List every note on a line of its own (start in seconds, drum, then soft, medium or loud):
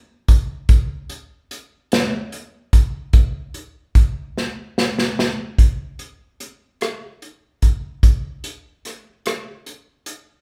0.28 kick medium
0.28 closed hi-hat medium
0.69 kick loud
0.69 closed hi-hat medium
1.10 closed hi-hat medium
1.51 closed hi-hat medium
1.92 snare loud
1.92 closed hi-hat medium
2.32 closed hi-hat soft
2.73 kick medium
2.73 closed hi-hat medium
3.13 kick loud
3.13 closed hi-hat medium
3.54 closed hi-hat medium
3.95 kick medium
3.95 closed hi-hat medium
4.37 snare medium
4.78 snare medium
4.99 snare medium
5.19 snare medium
5.59 kick medium
5.59 closed hi-hat medium
5.99 closed hi-hat soft
6.40 closed hi-hat medium
6.81 cross-stick medium
6.81 closed hi-hat medium
7.22 closed hi-hat soft
7.62 kick medium
7.62 closed hi-hat medium
8.03 kick medium
8.03 closed hi-hat medium
8.44 closed hi-hat soft
8.85 cross-stick soft
8.85 closed hi-hat medium
9.26 cross-stick medium
9.26 closed hi-hat medium
9.66 closed hi-hat soft
10.06 closed hi-hat medium